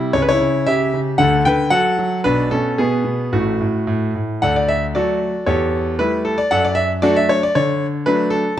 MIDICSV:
0, 0, Header, 1, 2, 480
1, 0, Start_track
1, 0, Key_signature, 2, "major"
1, 0, Tempo, 521286
1, 134, Time_signature, 2, 2, 24, 8
1, 2055, Tempo, 540541
1, 4455, Tempo, 516796
1, 7853, End_track
2, 0, Start_track
2, 0, Title_t, "Grand piano"
2, 0, Program_c, 0, 0
2, 0, Note_on_c, 0, 48, 66
2, 0, Note_on_c, 0, 55, 65
2, 0, Note_on_c, 0, 64, 92
2, 102, Note_off_c, 0, 55, 0
2, 123, Note_on_c, 0, 73, 97
2, 124, Note_on_c, 0, 37, 65
2, 127, Note_off_c, 0, 48, 0
2, 127, Note_on_c, 0, 49, 67
2, 129, Note_off_c, 0, 64, 0
2, 192, Note_off_c, 0, 73, 0
2, 204, Note_on_c, 0, 71, 84
2, 263, Note_on_c, 0, 73, 101
2, 265, Note_off_c, 0, 71, 0
2, 277, Note_on_c, 0, 64, 77
2, 362, Note_off_c, 0, 37, 0
2, 363, Note_off_c, 0, 49, 0
2, 381, Note_on_c, 0, 49, 63
2, 596, Note_off_c, 0, 64, 0
2, 605, Note_off_c, 0, 49, 0
2, 612, Note_on_c, 0, 76, 103
2, 614, Note_off_c, 0, 73, 0
2, 619, Note_on_c, 0, 49, 66
2, 622, Note_on_c, 0, 67, 81
2, 846, Note_off_c, 0, 49, 0
2, 861, Note_on_c, 0, 49, 64
2, 898, Note_off_c, 0, 76, 0
2, 1060, Note_off_c, 0, 67, 0
2, 1086, Note_off_c, 0, 49, 0
2, 1087, Note_on_c, 0, 78, 101
2, 1092, Note_on_c, 0, 38, 64
2, 1093, Note_on_c, 0, 50, 79
2, 1097, Note_on_c, 0, 69, 79
2, 1303, Note_off_c, 0, 78, 0
2, 1316, Note_off_c, 0, 69, 0
2, 1323, Note_off_c, 0, 38, 0
2, 1323, Note_off_c, 0, 50, 0
2, 1338, Note_on_c, 0, 79, 105
2, 1348, Note_on_c, 0, 50, 67
2, 1354, Note_on_c, 0, 71, 82
2, 1551, Note_off_c, 0, 79, 0
2, 1567, Note_off_c, 0, 71, 0
2, 1569, Note_on_c, 0, 78, 114
2, 1571, Note_on_c, 0, 54, 78
2, 1573, Note_off_c, 0, 50, 0
2, 1586, Note_on_c, 0, 69, 82
2, 1805, Note_off_c, 0, 54, 0
2, 1828, Note_on_c, 0, 54, 66
2, 2017, Note_off_c, 0, 78, 0
2, 2029, Note_off_c, 0, 69, 0
2, 2056, Note_off_c, 0, 54, 0
2, 2064, Note_on_c, 0, 71, 105
2, 2069, Note_on_c, 0, 47, 73
2, 2071, Note_on_c, 0, 35, 64
2, 2074, Note_on_c, 0, 62, 70
2, 2284, Note_off_c, 0, 62, 0
2, 2290, Note_off_c, 0, 47, 0
2, 2291, Note_off_c, 0, 35, 0
2, 2294, Note_off_c, 0, 71, 0
2, 2303, Note_on_c, 0, 69, 90
2, 2306, Note_on_c, 0, 47, 63
2, 2318, Note_on_c, 0, 61, 66
2, 2525, Note_off_c, 0, 61, 0
2, 2529, Note_off_c, 0, 47, 0
2, 2534, Note_off_c, 0, 69, 0
2, 2545, Note_on_c, 0, 68, 91
2, 2551, Note_on_c, 0, 47, 71
2, 2557, Note_on_c, 0, 59, 74
2, 2764, Note_off_c, 0, 47, 0
2, 2778, Note_on_c, 0, 47, 62
2, 2993, Note_off_c, 0, 59, 0
2, 3008, Note_off_c, 0, 47, 0
2, 3019, Note_off_c, 0, 68, 0
2, 3027, Note_on_c, 0, 45, 64
2, 3028, Note_on_c, 0, 66, 78
2, 3030, Note_on_c, 0, 33, 57
2, 3038, Note_on_c, 0, 57, 61
2, 3255, Note_off_c, 0, 45, 0
2, 3257, Note_off_c, 0, 33, 0
2, 3276, Note_on_c, 0, 45, 61
2, 3497, Note_off_c, 0, 45, 0
2, 3511, Note_on_c, 0, 45, 70
2, 3716, Note_off_c, 0, 66, 0
2, 3721, Note_off_c, 0, 57, 0
2, 3743, Note_off_c, 0, 45, 0
2, 3761, Note_on_c, 0, 45, 56
2, 3987, Note_off_c, 0, 45, 0
2, 3998, Note_on_c, 0, 78, 97
2, 4003, Note_on_c, 0, 38, 66
2, 4011, Note_on_c, 0, 74, 76
2, 4014, Note_on_c, 0, 69, 77
2, 4108, Note_off_c, 0, 74, 0
2, 4109, Note_off_c, 0, 78, 0
2, 4110, Note_off_c, 0, 69, 0
2, 4125, Note_on_c, 0, 74, 86
2, 4231, Note_off_c, 0, 74, 0
2, 4233, Note_on_c, 0, 76, 89
2, 4370, Note_off_c, 0, 76, 0
2, 4449, Note_off_c, 0, 38, 0
2, 4468, Note_on_c, 0, 74, 93
2, 4474, Note_on_c, 0, 54, 53
2, 4476, Note_on_c, 0, 66, 67
2, 4477, Note_on_c, 0, 57, 50
2, 4481, Note_on_c, 0, 69, 69
2, 4817, Note_off_c, 0, 54, 0
2, 4820, Note_off_c, 0, 57, 0
2, 4919, Note_off_c, 0, 66, 0
2, 4922, Note_off_c, 0, 69, 0
2, 4947, Note_on_c, 0, 73, 84
2, 4949, Note_off_c, 0, 74, 0
2, 4952, Note_on_c, 0, 40, 70
2, 4954, Note_on_c, 0, 69, 69
2, 4958, Note_on_c, 0, 67, 66
2, 5390, Note_off_c, 0, 73, 0
2, 5397, Note_off_c, 0, 69, 0
2, 5399, Note_off_c, 0, 67, 0
2, 5415, Note_off_c, 0, 40, 0
2, 5435, Note_on_c, 0, 71, 94
2, 5437, Note_on_c, 0, 55, 54
2, 5440, Note_on_c, 0, 57, 57
2, 5441, Note_on_c, 0, 64, 55
2, 5648, Note_off_c, 0, 71, 0
2, 5675, Note_on_c, 0, 69, 85
2, 5780, Note_off_c, 0, 55, 0
2, 5782, Note_off_c, 0, 57, 0
2, 5783, Note_off_c, 0, 64, 0
2, 5791, Note_off_c, 0, 69, 0
2, 5796, Note_on_c, 0, 74, 95
2, 5911, Note_off_c, 0, 74, 0
2, 5917, Note_on_c, 0, 78, 102
2, 5923, Note_on_c, 0, 42, 72
2, 5925, Note_on_c, 0, 74, 80
2, 5927, Note_on_c, 0, 69, 80
2, 6029, Note_off_c, 0, 74, 0
2, 6030, Note_off_c, 0, 69, 0
2, 6033, Note_off_c, 0, 78, 0
2, 6045, Note_on_c, 0, 74, 93
2, 6140, Note_on_c, 0, 76, 99
2, 6156, Note_off_c, 0, 74, 0
2, 6286, Note_off_c, 0, 76, 0
2, 6381, Note_off_c, 0, 42, 0
2, 6391, Note_on_c, 0, 54, 58
2, 6394, Note_on_c, 0, 74, 107
2, 6398, Note_on_c, 0, 57, 61
2, 6400, Note_on_c, 0, 62, 61
2, 6404, Note_on_c, 0, 66, 83
2, 6406, Note_on_c, 0, 69, 85
2, 6507, Note_off_c, 0, 66, 0
2, 6509, Note_off_c, 0, 69, 0
2, 6510, Note_off_c, 0, 74, 0
2, 6525, Note_on_c, 0, 76, 96
2, 6635, Note_off_c, 0, 76, 0
2, 6646, Note_on_c, 0, 73, 99
2, 6733, Note_off_c, 0, 54, 0
2, 6738, Note_off_c, 0, 57, 0
2, 6739, Note_off_c, 0, 62, 0
2, 6755, Note_off_c, 0, 73, 0
2, 6775, Note_on_c, 0, 74, 95
2, 6879, Note_off_c, 0, 74, 0
2, 6887, Note_on_c, 0, 73, 97
2, 6889, Note_on_c, 0, 50, 73
2, 7165, Note_off_c, 0, 73, 0
2, 7337, Note_off_c, 0, 50, 0
2, 7358, Note_on_c, 0, 71, 99
2, 7364, Note_on_c, 0, 54, 62
2, 7364, Note_on_c, 0, 57, 65
2, 7372, Note_on_c, 0, 62, 70
2, 7562, Note_off_c, 0, 71, 0
2, 7585, Note_on_c, 0, 69, 100
2, 7697, Note_off_c, 0, 54, 0
2, 7697, Note_off_c, 0, 57, 0
2, 7702, Note_off_c, 0, 62, 0
2, 7795, Note_off_c, 0, 69, 0
2, 7853, End_track
0, 0, End_of_file